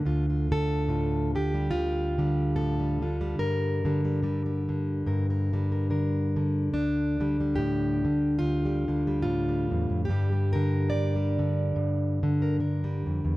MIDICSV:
0, 0, Header, 1, 2, 480
1, 0, Start_track
1, 0, Key_signature, -1, "minor"
1, 0, Tempo, 835655
1, 29, Time_signature, 4, 2, 24, 8
1, 7679, End_track
2, 0, Start_track
2, 0, Title_t, "Steel-string acoustic guitar"
2, 0, Program_c, 0, 25
2, 0, Note_on_c, 0, 50, 64
2, 0, Note_on_c, 0, 69, 43
2, 32, Note_on_c, 0, 38, 78
2, 37, Note_on_c, 0, 65, 56
2, 164, Note_off_c, 0, 65, 0
2, 171, Note_on_c, 0, 65, 45
2, 290, Note_off_c, 0, 50, 0
2, 296, Note_off_c, 0, 69, 0
2, 297, Note_on_c, 0, 50, 61
2, 298, Note_on_c, 0, 69, 99
2, 507, Note_off_c, 0, 65, 0
2, 508, Note_on_c, 0, 45, 66
2, 514, Note_on_c, 0, 65, 52
2, 768, Note_off_c, 0, 50, 0
2, 775, Note_on_c, 0, 50, 64
2, 776, Note_off_c, 0, 45, 0
2, 776, Note_off_c, 0, 69, 0
2, 779, Note_on_c, 0, 67, 85
2, 886, Note_on_c, 0, 55, 47
2, 973, Note_off_c, 0, 65, 0
2, 980, Note_on_c, 0, 65, 98
2, 982, Note_off_c, 0, 38, 0
2, 989, Note_on_c, 0, 38, 75
2, 1247, Note_off_c, 0, 50, 0
2, 1252, Note_off_c, 0, 55, 0
2, 1254, Note_on_c, 0, 50, 60
2, 1259, Note_on_c, 0, 55, 49
2, 1467, Note_off_c, 0, 67, 0
2, 1469, Note_on_c, 0, 45, 61
2, 1470, Note_on_c, 0, 69, 94
2, 1599, Note_off_c, 0, 55, 0
2, 1606, Note_on_c, 0, 55, 43
2, 1728, Note_off_c, 0, 50, 0
2, 1732, Note_off_c, 0, 65, 0
2, 1735, Note_on_c, 0, 50, 65
2, 1737, Note_off_c, 0, 45, 0
2, 1738, Note_on_c, 0, 65, 49
2, 1836, Note_off_c, 0, 55, 0
2, 1843, Note_on_c, 0, 55, 50
2, 1923, Note_off_c, 0, 65, 0
2, 1943, Note_off_c, 0, 38, 0
2, 1945, Note_on_c, 0, 43, 70
2, 1946, Note_off_c, 0, 69, 0
2, 1949, Note_on_c, 0, 70, 95
2, 2204, Note_off_c, 0, 50, 0
2, 2211, Note_off_c, 0, 55, 0
2, 2211, Note_on_c, 0, 50, 64
2, 2218, Note_on_c, 0, 55, 47
2, 2318, Note_off_c, 0, 55, 0
2, 2325, Note_on_c, 0, 55, 45
2, 2420, Note_off_c, 0, 50, 0
2, 2426, Note_off_c, 0, 55, 0
2, 2427, Note_on_c, 0, 50, 61
2, 2433, Note_on_c, 0, 55, 50
2, 2554, Note_off_c, 0, 55, 0
2, 2561, Note_on_c, 0, 55, 43
2, 2686, Note_off_c, 0, 50, 0
2, 2693, Note_on_c, 0, 50, 59
2, 2902, Note_off_c, 0, 43, 0
2, 2908, Note_off_c, 0, 70, 0
2, 2909, Note_on_c, 0, 43, 74
2, 2914, Note_on_c, 0, 70, 49
2, 3039, Note_off_c, 0, 70, 0
2, 3046, Note_on_c, 0, 70, 45
2, 3169, Note_off_c, 0, 50, 0
2, 3173, Note_off_c, 0, 55, 0
2, 3176, Note_on_c, 0, 50, 61
2, 3179, Note_on_c, 0, 55, 45
2, 3279, Note_off_c, 0, 70, 0
2, 3285, Note_on_c, 0, 70, 44
2, 3383, Note_off_c, 0, 50, 0
2, 3385, Note_off_c, 0, 70, 0
2, 3390, Note_on_c, 0, 50, 57
2, 3393, Note_on_c, 0, 70, 42
2, 3648, Note_off_c, 0, 50, 0
2, 3655, Note_on_c, 0, 50, 60
2, 3844, Note_off_c, 0, 43, 0
2, 3845, Note_off_c, 0, 70, 0
2, 3868, Note_on_c, 0, 38, 72
2, 3869, Note_on_c, 0, 62, 81
2, 3870, Note_off_c, 0, 55, 0
2, 4130, Note_off_c, 0, 50, 0
2, 4137, Note_on_c, 0, 50, 59
2, 4140, Note_on_c, 0, 55, 47
2, 4244, Note_off_c, 0, 55, 0
2, 4252, Note_on_c, 0, 55, 41
2, 4340, Note_on_c, 0, 67, 81
2, 4353, Note_on_c, 0, 45, 64
2, 4615, Note_off_c, 0, 50, 0
2, 4619, Note_off_c, 0, 45, 0
2, 4622, Note_on_c, 0, 50, 58
2, 4815, Note_off_c, 0, 62, 0
2, 4817, Note_on_c, 0, 65, 98
2, 4823, Note_off_c, 0, 38, 0
2, 4829, Note_on_c, 0, 38, 68
2, 4964, Note_off_c, 0, 55, 0
2, 4971, Note_on_c, 0, 55, 40
2, 5094, Note_off_c, 0, 50, 0
2, 5098, Note_off_c, 0, 55, 0
2, 5101, Note_on_c, 0, 50, 61
2, 5105, Note_on_c, 0, 55, 47
2, 5204, Note_off_c, 0, 55, 0
2, 5211, Note_on_c, 0, 55, 44
2, 5292, Note_off_c, 0, 65, 0
2, 5299, Note_on_c, 0, 65, 89
2, 5305, Note_off_c, 0, 67, 0
2, 5312, Note_on_c, 0, 45, 59
2, 5441, Note_off_c, 0, 55, 0
2, 5448, Note_on_c, 0, 55, 45
2, 5576, Note_off_c, 0, 38, 0
2, 5578, Note_on_c, 0, 40, 62
2, 5684, Note_off_c, 0, 40, 0
2, 5686, Note_on_c, 0, 41, 61
2, 5771, Note_off_c, 0, 65, 0
2, 5773, Note_on_c, 0, 67, 91
2, 5791, Note_off_c, 0, 41, 0
2, 5791, Note_off_c, 0, 45, 0
2, 5792, Note_off_c, 0, 50, 0
2, 5792, Note_off_c, 0, 55, 0
2, 5793, Note_on_c, 0, 43, 77
2, 5799, Note_on_c, 0, 50, 50
2, 5803, Note_on_c, 0, 55, 53
2, 5923, Note_off_c, 0, 55, 0
2, 5930, Note_on_c, 0, 55, 43
2, 6047, Note_on_c, 0, 70, 105
2, 6054, Note_off_c, 0, 50, 0
2, 6061, Note_on_c, 0, 50, 62
2, 6259, Note_on_c, 0, 74, 93
2, 6263, Note_off_c, 0, 50, 0
2, 6270, Note_on_c, 0, 50, 66
2, 6403, Note_off_c, 0, 55, 0
2, 6409, Note_on_c, 0, 55, 42
2, 6530, Note_off_c, 0, 67, 0
2, 6534, Note_off_c, 0, 50, 0
2, 6541, Note_on_c, 0, 50, 64
2, 6746, Note_off_c, 0, 70, 0
2, 6747, Note_off_c, 0, 43, 0
2, 6754, Note_on_c, 0, 43, 72
2, 7018, Note_off_c, 0, 50, 0
2, 7025, Note_on_c, 0, 50, 65
2, 7134, Note_on_c, 0, 70, 43
2, 7226, Note_off_c, 0, 74, 0
2, 7228, Note_off_c, 0, 50, 0
2, 7233, Note_off_c, 0, 70, 0
2, 7235, Note_on_c, 0, 50, 60
2, 7240, Note_on_c, 0, 70, 44
2, 7368, Note_off_c, 0, 55, 0
2, 7375, Note_on_c, 0, 55, 48
2, 7501, Note_off_c, 0, 43, 0
2, 7504, Note_on_c, 0, 41, 66
2, 7606, Note_off_c, 0, 41, 0
2, 7609, Note_on_c, 0, 40, 63
2, 7679, Note_off_c, 0, 40, 0
2, 7679, Note_off_c, 0, 50, 0
2, 7679, Note_off_c, 0, 55, 0
2, 7679, Note_off_c, 0, 70, 0
2, 7679, End_track
0, 0, End_of_file